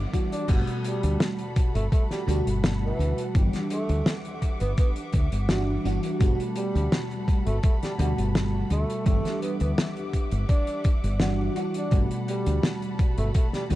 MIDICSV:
0, 0, Header, 1, 6, 480
1, 0, Start_track
1, 0, Key_signature, 1, "major"
1, 0, Tempo, 714286
1, 331, Time_signature, 4, 2, 24, 8
1, 9243, End_track
2, 0, Start_track
2, 0, Title_t, "String section"
2, 0, Program_c, 0, 48
2, 0, Note_on_c, 0, 55, 78
2, 0, Note_on_c, 0, 76, 75
2, 0, Note_on_c, 0, 78, 72
2, 0, Note_on_c, 0, 86, 89
2, 304, Note_off_c, 0, 55, 0
2, 304, Note_off_c, 0, 78, 0
2, 312, Note_off_c, 0, 76, 0
2, 312, Note_off_c, 0, 86, 0
2, 330, Note_on_c, 0, 55, 83
2, 330, Note_on_c, 0, 78, 74
2, 330, Note_on_c, 0, 81, 74
2, 331, Note_on_c, 0, 83, 92
2, 2231, Note_off_c, 0, 81, 0
2, 2232, Note_off_c, 0, 83, 0
2, 2251, Note_on_c, 0, 76, 76
2, 2251, Note_on_c, 0, 86, 92
2, 4152, Note_off_c, 0, 76, 0
2, 4152, Note_off_c, 0, 86, 0
2, 4170, Note_on_c, 0, 81, 75
2, 4172, Note_on_c, 0, 83, 94
2, 6064, Note_off_c, 0, 78, 0
2, 6072, Note_off_c, 0, 81, 0
2, 6072, Note_off_c, 0, 83, 0
2, 6092, Note_on_c, 0, 78, 74
2, 6093, Note_on_c, 0, 76, 74
2, 6093, Note_on_c, 0, 86, 87
2, 7984, Note_off_c, 0, 55, 0
2, 7993, Note_off_c, 0, 76, 0
2, 7993, Note_off_c, 0, 86, 0
2, 8009, Note_on_c, 0, 55, 85
2, 8010, Note_on_c, 0, 81, 77
2, 8010, Note_on_c, 0, 83, 92
2, 9243, Note_off_c, 0, 55, 0
2, 9243, Note_off_c, 0, 78, 0
2, 9243, Note_off_c, 0, 81, 0
2, 9243, Note_off_c, 0, 83, 0
2, 9243, End_track
3, 0, Start_track
3, 0, Title_t, "FM electric piano"
3, 0, Program_c, 1, 5
3, 0, Control_c, 1, 64, 127
3, 0, Note_on_c, 1, 67, 87
3, 68, Note_off_c, 1, 67, 0
3, 84, Note_on_c, 1, 52, 75
3, 88, Note_on_c, 1, 55, 72
3, 91, Note_on_c, 1, 62, 71
3, 95, Note_on_c, 1, 66, 89
3, 300, Note_off_c, 1, 52, 0
3, 302, Note_off_c, 1, 55, 0
3, 304, Note_off_c, 1, 62, 0
3, 306, Note_off_c, 1, 66, 0
3, 319, Note_on_c, 1, 47, 97
3, 325, Note_on_c, 1, 55, 90
3, 333, Note_on_c, 1, 57, 87
3, 339, Note_on_c, 1, 66, 107
3, 340, Control_c, 1, 64, 0
3, 455, Control_c, 1, 64, 127
3, 1498, Note_off_c, 1, 47, 0
3, 1501, Note_off_c, 1, 55, 0
3, 1505, Note_off_c, 1, 57, 0
3, 1508, Note_off_c, 1, 66, 0
3, 1521, Note_on_c, 1, 47, 97
3, 1527, Note_on_c, 1, 55, 89
3, 1534, Note_on_c, 1, 57, 83
3, 1541, Note_on_c, 1, 66, 104
3, 2219, Note_off_c, 1, 47, 0
3, 2222, Note_off_c, 1, 55, 0
3, 2225, Note_off_c, 1, 57, 0
3, 2229, Note_off_c, 1, 66, 0
3, 2242, Note_on_c, 1, 52, 81
3, 2248, Note_on_c, 1, 55, 79
3, 2255, Note_on_c, 1, 62, 76
3, 2260, Control_c, 1, 64, 0
3, 2262, Note_on_c, 1, 67, 93
3, 2388, Control_c, 1, 64, 127
3, 3664, Note_off_c, 1, 52, 0
3, 3667, Note_off_c, 1, 55, 0
3, 3670, Note_off_c, 1, 62, 0
3, 3674, Note_off_c, 1, 67, 0
3, 3686, Note_on_c, 1, 52, 96
3, 3690, Note_on_c, 1, 55, 89
3, 3694, Note_on_c, 1, 62, 87
3, 3697, Note_on_c, 1, 66, 109
3, 3901, Note_off_c, 1, 52, 0
3, 3903, Note_off_c, 1, 55, 0
3, 3905, Note_off_c, 1, 62, 0
3, 3907, Note_off_c, 1, 66, 0
3, 3925, Note_on_c, 1, 52, 96
3, 3929, Note_on_c, 1, 55, 87
3, 3932, Note_on_c, 1, 62, 91
3, 3936, Note_on_c, 1, 66, 111
3, 4069, Note_off_c, 1, 52, 0
3, 4071, Note_off_c, 1, 55, 0
3, 4073, Note_off_c, 1, 62, 0
3, 4074, Note_off_c, 1, 66, 0
3, 4161, Note_on_c, 1, 47, 101
3, 4167, Note_on_c, 1, 55, 88
3, 4174, Note_on_c, 1, 57, 94
3, 4179, Control_c, 1, 64, 0
3, 4181, Note_on_c, 1, 66, 111
3, 4314, Control_c, 1, 64, 127
3, 5339, Note_off_c, 1, 47, 0
3, 5342, Note_off_c, 1, 55, 0
3, 5345, Note_off_c, 1, 57, 0
3, 5349, Note_off_c, 1, 66, 0
3, 5361, Note_on_c, 1, 47, 98
3, 5368, Note_on_c, 1, 55, 88
3, 5374, Note_on_c, 1, 57, 87
3, 5381, Note_on_c, 1, 66, 103
3, 6059, Note_off_c, 1, 47, 0
3, 6062, Note_off_c, 1, 55, 0
3, 6065, Note_off_c, 1, 57, 0
3, 6069, Note_off_c, 1, 66, 0
3, 6080, Note_on_c, 1, 52, 84
3, 6087, Note_on_c, 1, 55, 75
3, 6094, Note_on_c, 1, 62, 75
3, 6101, Control_c, 1, 64, 0
3, 6101, Note_on_c, 1, 67, 88
3, 6215, Control_c, 1, 64, 127
3, 7503, Note_off_c, 1, 52, 0
3, 7506, Note_off_c, 1, 55, 0
3, 7510, Note_off_c, 1, 62, 0
3, 7513, Note_off_c, 1, 67, 0
3, 7525, Note_on_c, 1, 52, 96
3, 7528, Note_on_c, 1, 55, 89
3, 7531, Note_on_c, 1, 62, 86
3, 7534, Note_on_c, 1, 66, 106
3, 7741, Note_off_c, 1, 52, 0
3, 7742, Note_off_c, 1, 55, 0
3, 7744, Note_off_c, 1, 62, 0
3, 7745, Note_off_c, 1, 66, 0
3, 7765, Note_on_c, 1, 52, 94
3, 7768, Note_on_c, 1, 55, 87
3, 7772, Note_on_c, 1, 62, 89
3, 7775, Note_on_c, 1, 66, 105
3, 7909, Note_off_c, 1, 52, 0
3, 7911, Note_off_c, 1, 55, 0
3, 7912, Note_off_c, 1, 62, 0
3, 7914, Note_off_c, 1, 66, 0
3, 8000, Note_on_c, 1, 47, 100
3, 8007, Note_on_c, 1, 55, 93
3, 8013, Note_on_c, 1, 57, 85
3, 8021, Control_c, 1, 64, 0
3, 8021, Note_on_c, 1, 66, 105
3, 8129, Control_c, 1, 64, 127
3, 9179, Note_off_c, 1, 47, 0
3, 9182, Note_off_c, 1, 55, 0
3, 9185, Note_off_c, 1, 57, 0
3, 9189, Note_off_c, 1, 66, 0
3, 9200, Note_on_c, 1, 47, 94
3, 9207, Note_on_c, 1, 55, 87
3, 9213, Note_on_c, 1, 57, 86
3, 9220, Note_on_c, 1, 66, 103
3, 9243, Note_off_c, 1, 47, 0
3, 9243, Note_off_c, 1, 55, 0
3, 9243, Note_off_c, 1, 57, 0
3, 9243, Note_off_c, 1, 66, 0
3, 9243, End_track
4, 0, Start_track
4, 0, Title_t, "Tenor saxophone"
4, 0, Program_c, 2, 66
4, 216, Note_on_c, 2, 62, 90
4, 330, Note_off_c, 2, 62, 0
4, 570, Note_on_c, 2, 55, 92
4, 861, Note_off_c, 2, 55, 0
4, 1175, Note_on_c, 2, 57, 93
4, 1249, Note_off_c, 2, 57, 0
4, 1291, Note_on_c, 2, 57, 76
4, 1372, Note_off_c, 2, 57, 0
4, 1418, Note_on_c, 2, 55, 92
4, 1490, Note_off_c, 2, 55, 0
4, 1532, Note_on_c, 2, 55, 76
4, 1613, Note_off_c, 2, 55, 0
4, 1900, Note_on_c, 2, 52, 99
4, 2184, Note_off_c, 2, 52, 0
4, 2490, Note_on_c, 2, 57, 97
4, 2781, Note_off_c, 2, 57, 0
4, 3098, Note_on_c, 2, 59, 93
4, 3171, Note_off_c, 2, 59, 0
4, 3211, Note_on_c, 2, 59, 77
4, 3292, Note_off_c, 2, 59, 0
4, 4411, Note_on_c, 2, 55, 97
4, 4702, Note_off_c, 2, 55, 0
4, 5017, Note_on_c, 2, 57, 95
4, 5090, Note_off_c, 2, 57, 0
4, 5133, Note_on_c, 2, 57, 76
4, 5213, Note_off_c, 2, 57, 0
4, 5258, Note_on_c, 2, 55, 91
4, 5330, Note_off_c, 2, 55, 0
4, 5371, Note_on_c, 2, 55, 76
4, 5452, Note_off_c, 2, 55, 0
4, 5852, Note_on_c, 2, 57, 96
4, 6069, Note_off_c, 2, 57, 0
4, 6091, Note_on_c, 2, 57, 94
4, 6308, Note_off_c, 2, 57, 0
4, 6332, Note_on_c, 2, 59, 87
4, 6412, Note_off_c, 2, 59, 0
4, 6457, Note_on_c, 2, 59, 75
4, 6530, Note_off_c, 2, 59, 0
4, 7052, Note_on_c, 2, 62, 96
4, 7342, Note_off_c, 2, 62, 0
4, 7899, Note_on_c, 2, 62, 90
4, 8062, Note_off_c, 2, 62, 0
4, 8252, Note_on_c, 2, 55, 97
4, 8542, Note_off_c, 2, 55, 0
4, 8858, Note_on_c, 2, 57, 95
4, 8930, Note_off_c, 2, 57, 0
4, 8974, Note_on_c, 2, 57, 78
4, 9053, Note_off_c, 2, 57, 0
4, 9099, Note_on_c, 2, 55, 94
4, 9171, Note_off_c, 2, 55, 0
4, 9213, Note_on_c, 2, 55, 76
4, 9243, Note_off_c, 2, 55, 0
4, 9243, End_track
5, 0, Start_track
5, 0, Title_t, "Fretless electric bass"
5, 0, Program_c, 3, 35
5, 331, Note_on_c, 3, 31, 99
5, 417, Note_off_c, 3, 31, 0
5, 696, Note_on_c, 3, 38, 96
5, 774, Note_off_c, 3, 38, 0
5, 1177, Note_on_c, 3, 31, 92
5, 1254, Note_off_c, 3, 31, 0
5, 1529, Note_on_c, 3, 38, 91
5, 1616, Note_off_c, 3, 38, 0
5, 1658, Note_on_c, 3, 31, 85
5, 1953, Note_off_c, 3, 31, 0
5, 2010, Note_on_c, 3, 38, 80
5, 2097, Note_off_c, 3, 38, 0
5, 2251, Note_on_c, 3, 31, 100
5, 2337, Note_off_c, 3, 31, 0
5, 2616, Note_on_c, 3, 38, 95
5, 2694, Note_off_c, 3, 38, 0
5, 3099, Note_on_c, 3, 31, 88
5, 3175, Note_off_c, 3, 31, 0
5, 3452, Note_on_c, 3, 38, 90
5, 3538, Note_off_c, 3, 38, 0
5, 3577, Note_on_c, 3, 31, 83
5, 3873, Note_off_c, 3, 31, 0
5, 3931, Note_on_c, 3, 31, 81
5, 4017, Note_off_c, 3, 31, 0
5, 4171, Note_on_c, 3, 31, 102
5, 4257, Note_off_c, 3, 31, 0
5, 4538, Note_on_c, 3, 38, 96
5, 4615, Note_off_c, 3, 38, 0
5, 5018, Note_on_c, 3, 31, 87
5, 5095, Note_off_c, 3, 31, 0
5, 5371, Note_on_c, 3, 38, 93
5, 5457, Note_off_c, 3, 38, 0
5, 5497, Note_on_c, 3, 31, 85
5, 5793, Note_off_c, 3, 31, 0
5, 5851, Note_on_c, 3, 38, 81
5, 5937, Note_off_c, 3, 38, 0
5, 6091, Note_on_c, 3, 31, 101
5, 6177, Note_off_c, 3, 31, 0
5, 6457, Note_on_c, 3, 38, 96
5, 6535, Note_off_c, 3, 38, 0
5, 6936, Note_on_c, 3, 31, 89
5, 7014, Note_off_c, 3, 31, 0
5, 7417, Note_on_c, 3, 31, 83
5, 7713, Note_off_c, 3, 31, 0
5, 8010, Note_on_c, 3, 31, 101
5, 8097, Note_off_c, 3, 31, 0
5, 8377, Note_on_c, 3, 38, 96
5, 8454, Note_off_c, 3, 38, 0
5, 8857, Note_on_c, 3, 31, 89
5, 8935, Note_off_c, 3, 31, 0
5, 9211, Note_on_c, 3, 38, 90
5, 9243, Note_off_c, 3, 38, 0
5, 9243, End_track
6, 0, Start_track
6, 0, Title_t, "Drums"
6, 91, Note_on_c, 9, 36, 59
6, 91, Note_on_c, 9, 42, 82
6, 158, Note_off_c, 9, 36, 0
6, 158, Note_off_c, 9, 42, 0
6, 218, Note_on_c, 9, 42, 72
6, 285, Note_off_c, 9, 42, 0
6, 322, Note_on_c, 9, 49, 104
6, 328, Note_on_c, 9, 42, 88
6, 331, Note_on_c, 9, 36, 120
6, 389, Note_off_c, 9, 49, 0
6, 395, Note_off_c, 9, 42, 0
6, 398, Note_off_c, 9, 36, 0
6, 453, Note_on_c, 9, 42, 53
6, 520, Note_off_c, 9, 42, 0
6, 568, Note_on_c, 9, 42, 88
6, 635, Note_off_c, 9, 42, 0
6, 694, Note_on_c, 9, 42, 66
6, 761, Note_off_c, 9, 42, 0
6, 808, Note_on_c, 9, 38, 126
6, 812, Note_on_c, 9, 42, 84
6, 875, Note_off_c, 9, 38, 0
6, 879, Note_off_c, 9, 42, 0
6, 931, Note_on_c, 9, 42, 53
6, 998, Note_off_c, 9, 42, 0
6, 1048, Note_on_c, 9, 42, 83
6, 1051, Note_on_c, 9, 36, 109
6, 1115, Note_off_c, 9, 42, 0
6, 1118, Note_off_c, 9, 36, 0
6, 1178, Note_on_c, 9, 42, 74
6, 1245, Note_off_c, 9, 42, 0
6, 1291, Note_on_c, 9, 36, 115
6, 1292, Note_on_c, 9, 42, 84
6, 1358, Note_off_c, 9, 36, 0
6, 1359, Note_off_c, 9, 42, 0
6, 1415, Note_on_c, 9, 38, 35
6, 1420, Note_on_c, 9, 42, 59
6, 1482, Note_off_c, 9, 38, 0
6, 1487, Note_off_c, 9, 42, 0
6, 1536, Note_on_c, 9, 42, 97
6, 1603, Note_off_c, 9, 42, 0
6, 1661, Note_on_c, 9, 42, 66
6, 1728, Note_off_c, 9, 42, 0
6, 1771, Note_on_c, 9, 42, 96
6, 1773, Note_on_c, 9, 38, 126
6, 1839, Note_off_c, 9, 42, 0
6, 1840, Note_off_c, 9, 38, 0
6, 2018, Note_on_c, 9, 42, 85
6, 2085, Note_off_c, 9, 42, 0
6, 2137, Note_on_c, 9, 42, 66
6, 2204, Note_off_c, 9, 42, 0
6, 2250, Note_on_c, 9, 42, 89
6, 2251, Note_on_c, 9, 36, 123
6, 2317, Note_off_c, 9, 42, 0
6, 2318, Note_off_c, 9, 36, 0
6, 2374, Note_on_c, 9, 42, 58
6, 2377, Note_on_c, 9, 38, 37
6, 2441, Note_off_c, 9, 42, 0
6, 2444, Note_off_c, 9, 38, 0
6, 2489, Note_on_c, 9, 42, 94
6, 2556, Note_off_c, 9, 42, 0
6, 2614, Note_on_c, 9, 42, 65
6, 2682, Note_off_c, 9, 42, 0
6, 2728, Note_on_c, 9, 38, 127
6, 2735, Note_on_c, 9, 42, 90
6, 2796, Note_off_c, 9, 38, 0
6, 2802, Note_off_c, 9, 42, 0
6, 2855, Note_on_c, 9, 42, 55
6, 2922, Note_off_c, 9, 42, 0
6, 2969, Note_on_c, 9, 42, 83
6, 2971, Note_on_c, 9, 36, 63
6, 3037, Note_off_c, 9, 42, 0
6, 3038, Note_off_c, 9, 36, 0
6, 3093, Note_on_c, 9, 42, 65
6, 3160, Note_off_c, 9, 42, 0
6, 3209, Note_on_c, 9, 42, 85
6, 3211, Note_on_c, 9, 36, 118
6, 3276, Note_off_c, 9, 42, 0
6, 3279, Note_off_c, 9, 36, 0
6, 3332, Note_on_c, 9, 42, 51
6, 3400, Note_off_c, 9, 42, 0
6, 3445, Note_on_c, 9, 42, 90
6, 3452, Note_on_c, 9, 36, 109
6, 3512, Note_off_c, 9, 42, 0
6, 3519, Note_off_c, 9, 36, 0
6, 3576, Note_on_c, 9, 42, 70
6, 3643, Note_off_c, 9, 42, 0
6, 3688, Note_on_c, 9, 38, 127
6, 3691, Note_on_c, 9, 42, 85
6, 3755, Note_off_c, 9, 38, 0
6, 3758, Note_off_c, 9, 42, 0
6, 3935, Note_on_c, 9, 42, 88
6, 4002, Note_off_c, 9, 42, 0
6, 4053, Note_on_c, 9, 42, 73
6, 4120, Note_off_c, 9, 42, 0
6, 4169, Note_on_c, 9, 42, 94
6, 4171, Note_on_c, 9, 36, 127
6, 4237, Note_off_c, 9, 42, 0
6, 4239, Note_off_c, 9, 36, 0
6, 4301, Note_on_c, 9, 42, 57
6, 4368, Note_off_c, 9, 42, 0
6, 4405, Note_on_c, 9, 42, 92
6, 4472, Note_off_c, 9, 42, 0
6, 4541, Note_on_c, 9, 42, 72
6, 4609, Note_off_c, 9, 42, 0
6, 4651, Note_on_c, 9, 38, 123
6, 4654, Note_on_c, 9, 42, 94
6, 4719, Note_off_c, 9, 38, 0
6, 4721, Note_off_c, 9, 42, 0
6, 4779, Note_on_c, 9, 42, 49
6, 4846, Note_off_c, 9, 42, 0
6, 4891, Note_on_c, 9, 36, 112
6, 4895, Note_on_c, 9, 42, 82
6, 4959, Note_off_c, 9, 36, 0
6, 4963, Note_off_c, 9, 42, 0
6, 5017, Note_on_c, 9, 42, 61
6, 5084, Note_off_c, 9, 42, 0
6, 5128, Note_on_c, 9, 42, 84
6, 5131, Note_on_c, 9, 36, 124
6, 5195, Note_off_c, 9, 42, 0
6, 5198, Note_off_c, 9, 36, 0
6, 5259, Note_on_c, 9, 42, 55
6, 5262, Note_on_c, 9, 38, 39
6, 5327, Note_off_c, 9, 42, 0
6, 5329, Note_off_c, 9, 38, 0
6, 5371, Note_on_c, 9, 42, 98
6, 5438, Note_off_c, 9, 42, 0
6, 5500, Note_on_c, 9, 42, 69
6, 5567, Note_off_c, 9, 42, 0
6, 5612, Note_on_c, 9, 38, 124
6, 5612, Note_on_c, 9, 42, 98
6, 5679, Note_off_c, 9, 42, 0
6, 5680, Note_off_c, 9, 38, 0
6, 5849, Note_on_c, 9, 42, 94
6, 5916, Note_off_c, 9, 42, 0
6, 5980, Note_on_c, 9, 42, 69
6, 6047, Note_off_c, 9, 42, 0
6, 6087, Note_on_c, 9, 42, 93
6, 6091, Note_on_c, 9, 36, 124
6, 6154, Note_off_c, 9, 42, 0
6, 6158, Note_off_c, 9, 36, 0
6, 6217, Note_on_c, 9, 42, 55
6, 6220, Note_on_c, 9, 38, 37
6, 6285, Note_off_c, 9, 42, 0
6, 6288, Note_off_c, 9, 38, 0
6, 6333, Note_on_c, 9, 42, 87
6, 6400, Note_off_c, 9, 42, 0
6, 6452, Note_on_c, 9, 42, 60
6, 6519, Note_off_c, 9, 42, 0
6, 6572, Note_on_c, 9, 42, 94
6, 6573, Note_on_c, 9, 38, 126
6, 6639, Note_off_c, 9, 42, 0
6, 6640, Note_off_c, 9, 38, 0
6, 6698, Note_on_c, 9, 42, 52
6, 6765, Note_off_c, 9, 42, 0
6, 6811, Note_on_c, 9, 36, 63
6, 6811, Note_on_c, 9, 42, 88
6, 6878, Note_off_c, 9, 36, 0
6, 6878, Note_off_c, 9, 42, 0
6, 6932, Note_on_c, 9, 42, 61
6, 6999, Note_off_c, 9, 42, 0
6, 7049, Note_on_c, 9, 42, 79
6, 7051, Note_on_c, 9, 36, 126
6, 7116, Note_off_c, 9, 42, 0
6, 7118, Note_off_c, 9, 36, 0
6, 7172, Note_on_c, 9, 42, 55
6, 7239, Note_off_c, 9, 42, 0
6, 7285, Note_on_c, 9, 42, 80
6, 7290, Note_on_c, 9, 36, 112
6, 7353, Note_off_c, 9, 42, 0
6, 7357, Note_off_c, 9, 36, 0
6, 7418, Note_on_c, 9, 42, 70
6, 7485, Note_off_c, 9, 42, 0
6, 7524, Note_on_c, 9, 38, 124
6, 7529, Note_on_c, 9, 42, 85
6, 7591, Note_off_c, 9, 38, 0
6, 7596, Note_off_c, 9, 42, 0
6, 7768, Note_on_c, 9, 42, 88
6, 7836, Note_off_c, 9, 42, 0
6, 7891, Note_on_c, 9, 42, 68
6, 7958, Note_off_c, 9, 42, 0
6, 8005, Note_on_c, 9, 42, 95
6, 8010, Note_on_c, 9, 36, 127
6, 8073, Note_off_c, 9, 42, 0
6, 8077, Note_off_c, 9, 36, 0
6, 8136, Note_on_c, 9, 42, 54
6, 8203, Note_off_c, 9, 42, 0
6, 8253, Note_on_c, 9, 42, 93
6, 8321, Note_off_c, 9, 42, 0
6, 8376, Note_on_c, 9, 42, 67
6, 8443, Note_off_c, 9, 42, 0
6, 8490, Note_on_c, 9, 38, 118
6, 8492, Note_on_c, 9, 42, 94
6, 8557, Note_off_c, 9, 38, 0
6, 8559, Note_off_c, 9, 42, 0
6, 8617, Note_on_c, 9, 42, 50
6, 8684, Note_off_c, 9, 42, 0
6, 8731, Note_on_c, 9, 36, 104
6, 8731, Note_on_c, 9, 42, 78
6, 8798, Note_off_c, 9, 36, 0
6, 8798, Note_off_c, 9, 42, 0
6, 8855, Note_on_c, 9, 42, 66
6, 8922, Note_off_c, 9, 42, 0
6, 8968, Note_on_c, 9, 42, 93
6, 8971, Note_on_c, 9, 36, 114
6, 9035, Note_off_c, 9, 42, 0
6, 9038, Note_off_c, 9, 36, 0
6, 9094, Note_on_c, 9, 38, 35
6, 9098, Note_on_c, 9, 42, 51
6, 9162, Note_off_c, 9, 38, 0
6, 9166, Note_off_c, 9, 42, 0
6, 9208, Note_on_c, 9, 42, 90
6, 9243, Note_off_c, 9, 42, 0
6, 9243, End_track
0, 0, End_of_file